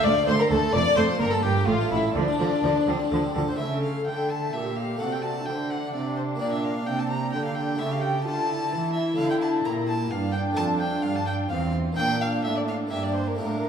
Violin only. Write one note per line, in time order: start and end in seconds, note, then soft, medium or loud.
0.04 0.26 D5 loud
0.27 0.38 C5 medium
0.38 0.43 A#4 medium
0.50 0.74 A4 loud
0.73 0.96 D5 loud
0.96 1.04 C5 medium
1.19 1.33 A#4 medium
1.31 1.44 A4 medium
1.43 1.68 G4 medium
1.66 1.90 F4 medium
1.91 1.99 E4 medium
2.16 3.33 D4 medium
3.48 3.58 C5 medium
3.58 3.82 E5 medium
3.83 4.06 F5 soft
4.07 4.32 G5 medium
4.30 4.55 A5 medium
4.54 4.78 E5 medium
4.76 5.01 F5 medium
5.00 5.14 F#5 medium
5.13 5.24 G5 medium
5.23 5.48 A5 medium
5.46 5.72 G5 medium
5.71 5.93 F#5 medium
5.94 6.16 D5 medium
6.17 6.22 C5 medium
6.40 6.51 D5 medium
6.52 6.66 E5 medium
6.64 6.88 F5 medium
6.87 7.01 G5 medium
6.99 7.09 A5 medium
7.10 7.32 A#5 medium
7.33 7.44 G5 medium
7.45 7.57 F5 medium
7.55 7.81 G5 medium
7.79 7.93 E5 medium
7.91 8.03 F5 medium
8.01 8.24 G5 medium
8.24 8.93 A5 medium
8.94 9.17 E5 medium
9.17 9.29 F5 medium
9.31 9.35 G5 medium
9.42 9.50 A5 medium
9.65 9.73 A#5 medium
9.88 10.13 A5 medium
10.11 10.32 F5 medium
10.33 10.41 G5 medium
10.57 10.65 A5 medium
10.80 11.04 G5 medium
11.03 11.17 F5 medium
11.16 11.26 A5 medium
11.27 11.35 G5 medium
11.50 11.73 F5 medium
11.98 12.23 G5 loud
12.21 12.44 F5 medium
12.44 12.56 E5 medium
12.57 12.61 D5 medium
12.68 12.76 F5 medium
12.91 13.05 E5 medium
13.04 13.14 D5 medium
13.15 13.29 C5 medium
13.28 13.38 A#4 medium
13.39 13.69 A#4 medium